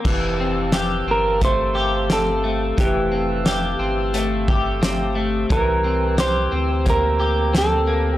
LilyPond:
<<
  \new Staff \with { instrumentName = "Tonewheel organ" } { \time 4/4 \key f \major \tempo 4 = 88 << { <f'' a'' e'''>1~ | <f'' a'' e'''>1 | <c'' g'' e'''>1 | } \\ { g'1~ | g'1~ | g'1 | } >> }
  \new Staff \with { instrumentName = "Clean electric guitar" } { \time 4/4 \key f \major r4. bes'8 c''4 a'4 | g'2 r2 | bes'4 c''4 bes'4 a'4 | }
  \new Staff \with { instrumentName = "Clean electric guitar" } { \time 4/4 \key f \major e8 c'8 g'8 c'8 a8 g'8 c'8 a8 | e8 c'8 g'8 c'8 a8 g'8 c'8 a8 | e8 c'8 g'8 c'8 bes8 g'8 c'8 bes8 | }
  \new Staff \with { instrumentName = "Sub bass" } { \clef bass \time 4/4 \key f \major f,,4. g,,2~ g,,8 | f,,4. g,,2~ g,,8 | c,4. d,2~ d,8 | }
  \new DrumStaff \with { instrumentName = "Drums" } \drummode { \time 4/4 <cymc bd>4 <hh sn>4 <hh bd>4 <hh sn>4 | <hh bd>4 <hh sn>4 hh8 bd8 <hh sn>4 | <hh bd>4 <hh sn>4 <hh bd>4 <hh sn>4 | }
>>